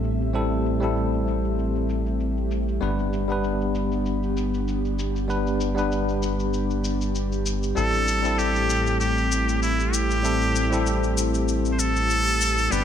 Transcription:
Already playing: A1 A2 G3 A3 C4 E4 G4 A4 E5
0.04 shaker
0.21 shaker
0.33 G3 C4 E4 A4, shaker
0.52 shaker
0.66 shaker
0.80 G3 C4 E4, shaker
0.84 A4
0.97 shaker
1.14 shaker
1.28 shaker
1.45 shaker
1.59 shaker
1.75 shaker
1.89 shaker
2.06 shaker
2.20 shaker
2.37 shaker
2.51 shaker
2.68 shaker
2.81 G1 G3 B3 D4 B4, shaker
2.99 shaker
3.10 D4, shaker
3.28 G3 B3 D4 B4, shaker
3.44 shaker
3.61 shaker
3.75 shaker
3.92 shaker
4.06 shaker
4.23 shaker
4.37 shaker
4.54 shaker
4.68 shaker
4.85 shaker
4.99 shaker
5.16 shaker
5.28 G3 B3 D4 B4, shaker
5.47 shaker
5.61 shaker
5.75 G3 B3 D4 B4, shaker
5.92 shaker
6.09 shaker
6.23 shaker
6.40 shaker
6.54 shaker
6.71 shaker
6.84 shaker
7.01 shaker
7.15 shaker
7.32 shaker
7.46 shaker
7.63 shaker
7.75 A1 A2 G3 C4 E4 A4, shaker
7.94 shaker
8.08 A3, shaker
8.23 G3 C4 E4 A4, shaker
8.38 G4, shaker
8.56 shaker
8.67 C4, shaker
8.87 E4, shaker
9.00 G4, shaker
9.18 shaker
9.32 shaker
9.49 shaker
9.62 E4, shaker
9.80 shaker
9.93 G4, shaker
10.11 shaker
10.23 G3 C4 E4 A4, shaker
10.42 shaker
10.56 shaker
10.70 G3 C4 E4 A4, shaker
10.86 shaker
11.04 shaker
11.18 shaker
11.34 shaker
11.48 shaker
11.65 shaker
11.72 C5
11.79 A4, shaker
11.96 shaker
12.10 shaker
12.27 shaker
12.41 shaker
12.58 shaker
12.70 G1 G3 B3 D4 G4 B4, shaker

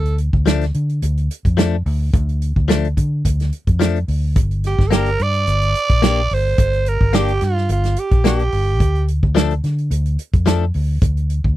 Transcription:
Already playing: D2 A4
0.05 closed hi-hat
0.18 closed hi-hat
0.33 D2, kick
0.46 F3 A3 D4, snare, closed hi-hat
0.61 snare, closed hi-hat
0.74 D3, closed hi-hat
0.89 closed hi-hat
1.02 D2, closed hi-hat
1.17 closed hi-hat
1.31 closed hi-hat
1.45 F2, kick, closed hi-hat
1.57 F3 A3 D4, snare, closed hi-hat
1.86 D2, open hi-hat
2.13 D2, kick, closed hi-hat
2.29 closed hi-hat
2.42 closed hi-hat
2.56 D2, kick
2.68 F3 A3 D4, snare, closed hi-hat
2.84 closed hi-hat
2.97 D3, kick, closed hi-hat
3.25 D2, kick, closed hi-hat
3.40 snare, closed hi-hat
3.52 closed hi-hat
3.67 F2, kick, closed hi-hat
3.80 F3 A3 D4, snare, closed hi-hat
3.96 closed hi-hat
4.08 D2, open hi-hat
4.36 G1, kick, closed hi-hat
4.51 closed hi-hat
4.64 G4, snare, closed hi-hat
4.79 G1, kick, snare
4.87 A#3 A4, closed hi-hat
4.92 D4 G4 A#4, snare
5.06 closed hi-hat
5.19 G2 D5, closed hi-hat
5.34 closed hi-hat
5.47 G1, closed hi-hat
5.62 closed hi-hat
5.75 closed hi-hat
5.89 A#1, kick, closed hi-hat
6.02 A#3 D4 G4, snare, closed hi-hat
6.30 G1 C5, open hi-hat
6.58 G1, kick, closed hi-hat
6.73 closed hi-hat
6.86 A#4, closed hi-hat
7.01 G1, kick
7.13 A#3 D4 G4, snare, closed hi-hat
7.28 closed hi-hat
7.41 G2 F4, snare, closed hi-hat
7.57 snare
7.69 G1 F4, closed hi-hat
7.84 snare, closed hi-hat
7.96 G4, closed hi-hat
8.11 A#1, kick, closed hi-hat
8.24 A#3 D4 G4, snare, closed hi-hat
8.39 closed hi-hat
8.52 G1, open hi-hat
8.80 D2, kick, closed hi-hat
8.95 closed hi-hat
9.08 closed hi-hat
9.23 D2, kick
9.35 F3 A3 D4 A4, snare, closed hi-hat
9.51 closed hi-hat
9.64 D3, snare, closed hi-hat
9.78 closed hi-hat
9.91 D2, closed hi-hat
10.05 closed hi-hat
10.19 closed hi-hat
10.33 F2, kick, closed hi-hat
10.46 F3 A3 D4 A4, snare, closed hi-hat
10.74 D2, open hi-hat
11.02 D2, kick, closed hi-hat
11.17 closed hi-hat
11.30 closed hi-hat
11.44 D2, kick

